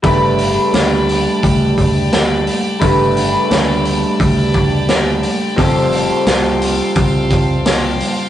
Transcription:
<<
  \new Staff \with { instrumentName = "Tonewheel organ" } { \time 4/4 \key g \mixolydian \tempo 4 = 87 << { <d'' b''>1~ | <d'' b''>1 | <f'' c'''>1 | } \\ { <g'' a''>1~ | <g'' a''>1~ | <g'' a''>1 | } >> }
  \new Staff \with { instrumentName = "Clean electric guitar" } { \time 4/4 \key g \mixolydian <g a d' g' b'>1 | <g a d' g' b'>1 | <f g c' g' a'>1 | }
  \new Staff \with { instrumentName = "Picked electric bass" } { \clef bass \time 4/4 \key g \mixolydian g,,4 d,4 d,2 | g,,4 d,4 d,2 | f,,4 c,4 c,2 | }
  \new DrumStaff \with { instrumentName = "Drums" } \drummode { \time 4/4 <hho bd>8 hho8 <hho sn>8 hho8 <hho bd>8 <hho bd>8 <hho sn>8 hho8 | <hho bd>8 hho8 <hho sn>8 hho8 <hho bd>8 <hho bd>8 <hho sn>8 hho8 | <hho bd>8 hho8 <hho sn>8 hho8 <hho bd>8 <hho bd>8 <hho sn>8 hho8 | }
>>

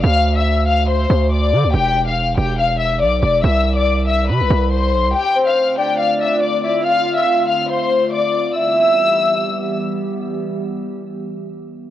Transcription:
<<
  \new Staff \with { instrumentName = "Violin section" } { \time 4/4 \key e \phrygian \tempo 4 = 141 <f'' f'''>8. <e'' e'''>8. <f'' f'''>8 <c'' c'''>4 <d'' d'''>4 | <g' g''>8. <f'' f'''>8. <g' g''>8 <f'' f'''>8 <e'' e'''>8 <d'' d'''>8 <d'' d'''>8 | <e'' e'''>8. <d'' d'''>8. <e'' e'''>8 <b' b''>4 <c'' c'''>4 | <g' g''>8. <f'' f'''>8. <g' g''>8 <f'' f'''>8 <e'' e'''>8 <d'' d'''>8 <d'' d'''>8 |
<f'' f'''>8. <e'' e'''>8. <f'' f'''>8 <c'' c'''>4 <d'' d'''>4 | e'''2. r4 | r1 | }
  \new Staff \with { instrumentName = "Soft synth lead" } { \time 4/4 \key e \phrygian r1 | r1 | r1 | r8 c''4 d''2 e''8 |
f''2 r2 | e''2. r4 | r1 | }
  \new Staff \with { instrumentName = "Ambient pad" } { \time 4/4 \key e \phrygian << { r1 | r1 | r1 | <d c' f'>1~ |
<d c' f'>1 | <e g b g'>1~ | <e g b g'>1 | } \\ { r1 | r1 | r1 | a1 |
a1 | r1 | r1 | } >> }
  \new Staff \with { instrumentName = "808-style bass" } { \clef bass \time 4/4 \key e \phrygian d,2~ d,8 d,4 d16 d,16 | e,,4. e,,4. b,,8 e,,8 | c,2 c16 c,16 c,4 b,,16 c,16 | r1 |
r1 | r1 | r1 | }
>>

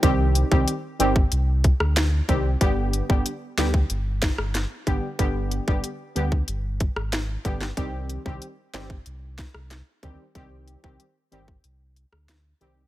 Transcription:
<<
  \new Staff \with { instrumentName = "Synth stab" } { \time 4/4 \key c \minor \tempo 4 = 93 <ees g c' g'>8. <ees g c' g'>16 r8 <ees g c' g'>16 r4. r16 <ees g c' g'>16 r16 | <d g b g'>8. <d g b g'>16 r8 <d g b g'>16 r4. r16 <d g b g'>16 r16 | <d g b g'>8. <d g b g'>16 r8 <d g b g'>16 r4. r16 <d g b g'>16 r16 | <ees g c' g'>8. <ees g c' g'>16 r8 <ees g c' g'>16 r4. r16 <ees g c' g'>16 r16 |
<ees g c' g'>8. <ees g c' g'>16 r8 <ees g c' g'>16 r4. r16 <ees g c' g'>16 r16 | }
  \new Staff \with { instrumentName = "Sub bass" } { \clef bass \time 4/4 \key c \minor c,8. c,16 r8 g,,8 c,8. d,8. c,8 | g,,8. g,,16 r8 d,8 g,,8. g,,8 r16 aes,,16 r16 | g,,8. g,,16 r8 d,8 g,,8. aes,,8. g,,8 | c,8. c,16 r8 g,,8 c,8. c,8 r16 d,16 r16 |
c,8. c,16 r8 g,,8 c,8. d,8. c,8 | }
  \new DrumStaff \with { instrumentName = "Drums" } \drummode { \time 4/4 <hh bd>8 hh16 bd16 hh8 hh16 bd16 hh8 <hh bd>16 ss16 <hh sn>8 <hh bd>8 | <hh bd>8 hh16 bd16 hh8 <hh sn>16 bd16 hh8 <hh bd sn>16 ss16 <hh sn>8 <hh bd>8 | <hh bd>8 hh16 bd16 hh8 hh16 bd16 hh8 <hh bd>16 ss16 <hh sn>8 <hh bd>16 sn16 | <hh bd>8 hh16 bd16 hh8 <hh sn>16 bd16 hh8 <hh bd sn>16 ss16 <hh sn>8 <hh bd>8 |
<hh bd>8 hh16 bd16 hh8 hh16 bd16 hh8 hh16 ss16 <hh sn>8 hh8 | }
>>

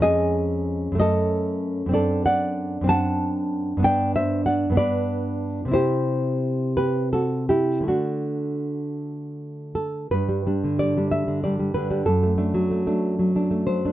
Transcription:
\new Staff \with { instrumentName = "Nylon-string guitar" } { \time 6/8 \key fis \dorian \tempo 4. = 62 << { <gis' dis''>4. <a' dis''>4. | \key g \major <a' d''>8 <d'' fis''>4 <fis'' a''>4. | <d'' g''>8 <c'' e''>8 <d'' fis''>8 <b' d''>4. | <g' c''>4. <g' b'>8 <fis' a'>8 <e' g'>8 |
<d' fis'>2~ <d' fis'>8 a'8 | b'4 d''8 e''8 d''8 b'8 | a'2 r8 c''8 | } \\ { <eis, gis cis'>4. <fis, a cis'>4. | <fis, c' d'>4. <fis, c' d'>4. | <g, b d'>4. <g, b d'>4. | <c c' e'>2. |
<d a>2. | g,16 g16 <g d'>16 d16 g16 <g d'>8 d16 <g d'>16 g16 d16 <g d'>16 | fis,16 a16 <a d'>16 fis16 a16 <a d'>8 fis16 <a d'>16 a16 fis16 <a d'>16 | } >> }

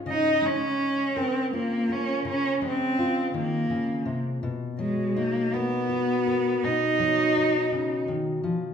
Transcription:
<<
  \new Staff \with { instrumentName = "Cello" } { \time 6/8 \key des \major \tempo 4. = 55 ees'8 des'4 c'8 bes8 des'8 | des'8 c'4 bes4 r8 | r8 aes8 bes8 ces'4. | ees'2 r4 | }
  \new Staff \with { instrumentName = "Steel-string acoustic guitar" } { \clef bass \time 6/8 \key des \major << { r4. bes'8 f'8 bes'8 | r4 f'2 | r4 ees'8 bes'8 ges'8 bes'8 | r4 ees'2 | } \\ { des8 aes2~ aes8 | des8 aes4 ees8 des8 c8 | ces8 ges2~ ges8 | ces8 ges4 des8 ees8 f8 | } >> }
>>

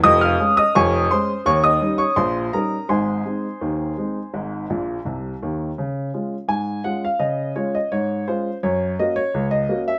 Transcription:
<<
  \new Staff \with { instrumentName = "Upright piano" } { \time 2/4 \key des \major \tempo 4 = 84 <ees'' ees'''>16 <f'' f'''>8 <ees'' ees'''>16 <des'' aes'' des'''>8 <c'' c'''>8 | <des'' des'''>16 <ees'' ees'''>8 <des'' des'''>16 <c'' c'''>8 <bes' bes''>8 | <c'' aes'' c'''>2~ | <c'' aes'' c'''>4 r4 |
r4 aes''8 ges''16 f''16 | ees''8 des''16 ees''16 des''8 c''8 | des''8 ees''16 des''8 ees''8 fes''16 | }
  \new Staff \with { instrumentName = "Upright piano" } { \clef bass \time 2/4 \key des \major <f,, f,>8 <aes des'>8 <f,, f,>8 <aes des'>8 | <ees, ees>8 <g des' ees'>8 <bes,, bes,>8 <g des' ees'>8 | <aes,, aes,>8 <aes c' ees'>8 <ees, ees>8 <aes c' ees'>8 | <aes,, aes,>8 <bes,, bes,>8 <c, c>8 <ees, ees>8 |
des8 <aes des' f'>8 aes,8 <aes des' f'>8 | des8 <aes des' f'>8 aes,8 <aes des' f'>8 | ges,8 <bes des' ges'>8 des,8 <bes des' ges'>8 | }
>>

